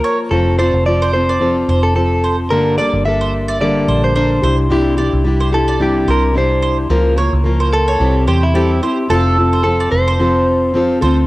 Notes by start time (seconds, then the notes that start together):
Already playing: F3 A#3 F4 A#4
0.04 C#5
0.31 F1 F3 C4 F4 A4
0.59 C4 F4 A4 C5 D5
0.73 F1
0.86 F3 C4 F4 A4 D5
1.02 C5
1.13 C4 F4 A4 C5
1.29 D5
1.40 F3 C4 F4 A4
1.68 F1 C5
1.83 A4
1.95 F3 C4 F4 A4
2.24 C5
2.50 G1 G2 D3 G3 A#3 D4 A4 A#4
2.78 G3 A#3 D4 A4 D5
2.93 G1
3.05 G3 A#3 D4 A4 E5
3.21 C5
3.48 D5
3.60 G2 D3 G3 A#3 D4 A4 D5
3.88 A#1 C5
4.04 C5
4.15 G3 A#3 D4 A4 A#4 C5
4.42 C2 D4 E4 G4 C5
4.70 C3 G3 D4 E4 G4
4.97 D4 E4 G4 D5
5.13 C2
5.24 G3 D4 E4 G4
5.40 C5
5.52 D4 E4 G4 A4
5.68 D5
5.80 C3 G3 D4 E4 G4
6.08 C2 A#4 C5
6.34 G3 D4 E4 G4 C5
6.62 C5
6.89 C#2 C#3 F3 A#3 F4 A#4
7.16 A#3 F4 A#4 C#5
7.33 C#2
7.44 F3 A#3 F4 A#4
7.60 C5
7.73 A4
7.88 C#5
7.99 C2 C3 G3 C4 E4 G4
8.27 E2 G4 C5
8.43 E4
8.54 G3 C4 E4 G4 A4
8.81 C4 E4 G4 C5
9.09 F1 F3 C4 F4 A4
9.37 C4 F4 A4
9.53 C5
9.64 F3 C4 F4 A4
9.80 D5
9.92 F1 C5
10.08 C5
10.19 F3 C4 F4 A4
10.74 F3 C4 F4 A4
11.01 D2 C4 F4 A4 C5